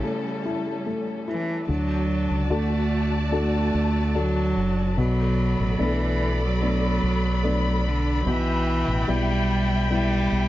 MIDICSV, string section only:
0, 0, Header, 1, 2, 480
1, 0, Start_track
1, 0, Key_signature, 2, "major"
1, 0, Tempo, 821918
1, 987, Time_signature, 4, 2, 24, 8
1, 6121, End_track
2, 0, Start_track
2, 0, Title_t, "String section"
2, 0, Program_c, 0, 48
2, 0, Note_on_c, 0, 55, 63
2, 0, Note_on_c, 0, 61, 55
2, 0, Note_on_c, 0, 69, 69
2, 968, Note_off_c, 0, 55, 0
2, 968, Note_off_c, 0, 69, 0
2, 969, Note_off_c, 0, 61, 0
2, 986, Note_on_c, 0, 74, 56
2, 987, Note_on_c, 0, 81, 69
2, 988, Note_on_c, 0, 66, 60
2, 2887, Note_off_c, 0, 74, 0
2, 2888, Note_off_c, 0, 66, 0
2, 2888, Note_off_c, 0, 81, 0
2, 2901, Note_on_c, 0, 69, 62
2, 2903, Note_on_c, 0, 74, 60
2, 2904, Note_on_c, 0, 83, 72
2, 4805, Note_off_c, 0, 69, 0
2, 4806, Note_off_c, 0, 74, 0
2, 4824, Note_on_c, 0, 79, 67
2, 4827, Note_on_c, 0, 76, 62
2, 6121, Note_off_c, 0, 76, 0
2, 6121, Note_off_c, 0, 79, 0
2, 6121, Note_off_c, 0, 83, 0
2, 6121, End_track
0, 0, End_of_file